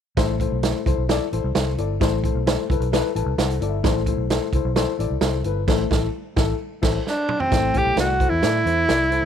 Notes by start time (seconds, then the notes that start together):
0.17 A1 A2 E4 A4 C5, kick, snare, closed hi-hat
0.40 E4 A4 C5, kick, closed hi-hat
0.52 B1
0.63 E4 A4 C5, snare, closed hi-hat
0.86 C2 E4 A4 C5, kick, closed hi-hat
0.98 B1
1.09 E4 A4 D5, snare, closed hi-hat
1.32 A1 E4 A4 C5, closed hi-hat
1.44 C2
1.55 C2 E4 A4 C5, snare, closed hi-hat
1.78 G1 E4 A4 D5, closed hi-hat
2.00 A1 A2 E4 A4 C5, kick, snare, closed hi-hat
2.24 E4 A4 C5, kick, closed hi-hat
2.35 B1
2.46 E4 A4 C5, snare, closed hi-hat
2.70 C2 E4 A4 B4, kick, closed hi-hat
2.80 B1, closed hi-hat
2.92 E4 A4 B4, snare, closed hi-hat
3.15 A1 E4 A4 B4 A5, closed hi-hat
3.26 C2
3.38 C2 E4 A4 C5 F#5, snare, closed hi-hat
3.51 closed hi-hat
3.60 G1 E4 A4 D5, closed hi-hat
3.69 E5
3.83 A1 A2 E4 A4 C5, kick, snare, closed hi-hat
4.06 E4 A4 C5, kick, closed hi-hat
4.17 B1
4.30 E4 A4 C5, snare, closed hi-hat
4.53 C2 E4 A4 C5, kick, closed hi-hat
4.65 B1
4.76 E4 A4 C5, snare, closed hi-hat
4.99 A1 E4 A4 D5, closed hi-hat
5.10 C2
5.21 C2 E4 A4 C5, snare, closed hi-hat
5.44 G1 E4 A4 B4, closed hi-hat
5.67 A1 A2 E4 A4 C5, kick, snare, crash
5.90 A1 E4 A4, kick, snare
6.36 A1 E4 A4, kick, snare
6.82 A1 E4 A4 C5, kick, snare, crash
7.07 D4, snare
7.29 mid tom
7.40 C4, floor tom
7.51 A1 A2 E4 A4 C5, kick, snare, closed hi-hat
7.73 E4 A4 C5, kick, closed hi-hat
7.78 G4
7.85 B1
7.96 C2 E4 A4 D5, snare, closed hi-hat
8.00 F#4
8.19 E4 A4 C5, kick, closed hi-hat
8.29 E2 E4
8.42 A2 E4 A4 D5, snare, closed hi-hat
8.65 E2 E4 A4 C5, closed hi-hat
8.88 C2 E4 A4 D5, snare, closed hi-hat
9.10 E4 A4 C5, closed hi-hat